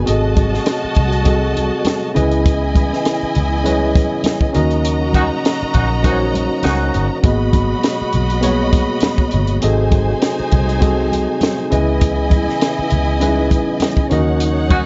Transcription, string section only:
0, 0, Header, 1, 2, 480
1, 0, Start_track
1, 0, Key_signature, 5, "minor"
1, 0, Tempo, 597015
1, 60, Time_signature, 4, 2, 24, 8
1, 11947, End_track
2, 0, Start_track
2, 0, Title_t, "String section"
2, 0, Program_c, 0, 48
2, 59, Note_on_c, 0, 66, 90
2, 59, Note_on_c, 0, 75, 90
2, 59, Note_on_c, 0, 81, 97
2, 1708, Note_off_c, 0, 66, 0
2, 1708, Note_off_c, 0, 75, 0
2, 1708, Note_off_c, 0, 81, 0
2, 1728, Note_on_c, 0, 75, 91
2, 1733, Note_on_c, 0, 64, 91
2, 1734, Note_on_c, 0, 80, 99
2, 3623, Note_off_c, 0, 75, 0
2, 3625, Note_off_c, 0, 64, 0
2, 3625, Note_off_c, 0, 80, 0
2, 3656, Note_on_c, 0, 66, 90
2, 3657, Note_on_c, 0, 75, 87
2, 3660, Note_on_c, 0, 82, 98
2, 5787, Note_off_c, 0, 66, 0
2, 5787, Note_off_c, 0, 75, 0
2, 5788, Note_off_c, 0, 82, 0
2, 5816, Note_on_c, 0, 66, 89
2, 5819, Note_on_c, 0, 75, 88
2, 5822, Note_on_c, 0, 83, 97
2, 7707, Note_off_c, 0, 66, 0
2, 7708, Note_off_c, 0, 75, 0
2, 7710, Note_off_c, 0, 83, 0
2, 7744, Note_on_c, 0, 63, 92
2, 7744, Note_on_c, 0, 72, 87
2, 7748, Note_on_c, 0, 80, 99
2, 9391, Note_off_c, 0, 63, 0
2, 9391, Note_off_c, 0, 72, 0
2, 9393, Note_off_c, 0, 80, 0
2, 9429, Note_on_c, 0, 80, 94
2, 9430, Note_on_c, 0, 64, 93
2, 9430, Note_on_c, 0, 75, 91
2, 11314, Note_off_c, 0, 80, 0
2, 11315, Note_off_c, 0, 64, 0
2, 11315, Note_off_c, 0, 75, 0
2, 11341, Note_on_c, 0, 63, 89
2, 11343, Note_on_c, 0, 73, 84
2, 11344, Note_on_c, 0, 78, 97
2, 11947, Note_off_c, 0, 63, 0
2, 11947, Note_off_c, 0, 73, 0
2, 11947, Note_off_c, 0, 78, 0
2, 11947, End_track
0, 0, End_of_file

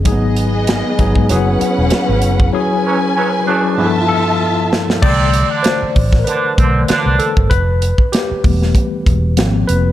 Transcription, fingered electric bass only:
0, 0, Header, 1, 3, 480
1, 0, Start_track
1, 0, Tempo, 620476
1, 44, Time_signature, 4, 2, 24, 8
1, 7676, End_track
2, 0, Start_track
2, 0, Title_t, "Fingered electric bass"
2, 0, Program_c, 0, 33
2, 50, Note_on_c, 0, 32, 102
2, 627, Note_off_c, 0, 32, 0
2, 771, Note_on_c, 0, 32, 98
2, 877, Note_off_c, 0, 32, 0
2, 895, Note_on_c, 0, 44, 85
2, 1010, Note_on_c, 0, 30, 106
2, 1021, Note_off_c, 0, 44, 0
2, 1209, Note_off_c, 0, 30, 0
2, 1380, Note_on_c, 0, 28, 86
2, 1471, Note_off_c, 0, 28, 0
2, 1616, Note_on_c, 0, 32, 85
2, 1730, Note_off_c, 0, 32, 0
2, 1730, Note_on_c, 0, 30, 95
2, 1930, Note_off_c, 0, 30, 0
2, 3891, Note_on_c, 0, 36, 100
2, 4200, Note_off_c, 0, 36, 0
2, 4617, Note_on_c, 0, 33, 93
2, 4814, Note_off_c, 0, 33, 0
2, 5094, Note_on_c, 0, 35, 89
2, 5293, Note_off_c, 0, 35, 0
2, 5461, Note_on_c, 0, 36, 83
2, 5552, Note_off_c, 0, 36, 0
2, 5704, Note_on_c, 0, 31, 93
2, 5794, Note_off_c, 0, 31, 0
2, 5810, Note_on_c, 0, 29, 100
2, 6119, Note_off_c, 0, 29, 0
2, 6535, Note_on_c, 0, 28, 91
2, 6733, Note_off_c, 0, 28, 0
2, 7015, Note_on_c, 0, 28, 97
2, 7257, Note_off_c, 0, 28, 0
2, 7257, Note_on_c, 0, 32, 105
2, 7454, Note_off_c, 0, 32, 0
2, 7500, Note_on_c, 0, 29, 91
2, 7676, Note_off_c, 0, 29, 0
2, 7676, End_track
3, 0, Start_track
3, 0, Title_t, "Muted fingered electric bass strokes"
3, 1249, Note_on_c, 9, 29, 46
3, 1326, Note_off_c, 9, 29, 0
3, 4507, Note_on_c, 9, 29, 46
3, 4585, Note_off_c, 9, 29, 0
3, 5336, Note_on_c, 9, 29, 49
3, 5414, Note_off_c, 9, 29, 0
3, 6432, Note_on_c, 9, 29, 47
3, 6509, Note_off_c, 9, 29, 0
3, 7676, End_track
0, 0, End_of_file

